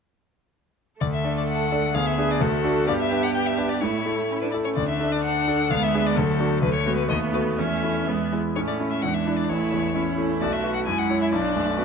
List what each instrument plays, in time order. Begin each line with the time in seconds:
1.00 grand piano D2, cello A3, viola A4, violin D5
1.13 violin E5
1.24 grand piano D4 A4 D5
1.37 violin D5
1.49 violin F#5
1.72 grand piano D4 A4 D5
1.94 grand piano D2, cello B3, viola G#4, violin F5
2.06 violin E5
2.18 grand piano D4 G#4 B4
2.31 violin D5
2.41 grand piano D2, cello A3, viola F#4, violin A4
2.64 grand piano D4 F#4 A4
2.87 grand piano G2, cello B3, viola G4, violin D5
3.00 violin E5
3.11 grand piano D4 G4 B4
3.23 violin F#5
3.34 violin G5
3.46 violin E5
3.58 grand piano D4 G4 B4
3.69 violin D5
3.81 grand piano A2, cello A3, viola E4, violin C#5
4.06 grand piano A3 E4 A4
4.30 cello C#4
4.41 cello D4, violin B4
4.51 grand piano A3 E4 A4, violin D5
4.64 cello C#4, violin C#5
4.76 grand piano D2, viola D4, violin D5
4.88 violin E5
5.00 grand piano A3 D4 A4
5.12 violin D5
5.24 violin F#5
5.47 grand piano A3 D4 A4
5.70 grand piano D2, cello G#3, viola B3, violin F5
5.83 violin E5
5.94 grand piano B3 D4 G#4
6.06 violin D5
6.17 grand piano D2, cello F#3, viola A3, violin A4
6.40 grand piano A3 D4 F#4
6.62 grand piano D2, cello F#3, viola A3, violin B4
6.74 violin C#5
6.86 cello G#3, grand piano A3 B3 F#4
6.97 violin B4
7.08 grand piano D#2, cello A3, viola B3, violin D#5
7.33 grand piano A3 B3 F#4, violin B4
7.58 grand piano E2, cello A3, viola C#4, violin E5
7.83 grand piano A3 C#4 E4
8.07 grand piano E2, cello G#3, viola B3
8.32 grand piano G#3 B3 E4
8.56 grand piano A2, cello A3, viola C#4, violin C#5
8.67 violin D5
8.80 grand piano C#4 E4
8.90 violin E5
9.02 grand piano E2, cello G#3, viola D4, violin F#5
9.14 violin E5
9.26 grand piano D4 E4
9.37 violin D5
9.49 grand piano A1, cello A3, viola E4, violin C#5
9.72 grand piano E2
9.94 cello A3, grand piano C#4 E4, viola E4
10.18 grand piano A3, cello C#4
10.41 grand piano B1, cello A3, viola F#4, violin D5
10.53 violin E5
10.64 grand piano F#4 B4
10.74 violin F#5
10.86 grand piano F#2, cello G#3, viola E4, violin G#5
10.98 violin F#5
11.10 grand piano E4 C#5
11.22 violin E5
11.32 grand piano B1, cello F#3, viola D4, violin D5
11.55 grand piano F#2, cello A3
11.78 cello B3, viola D4, grand piano F#4 B4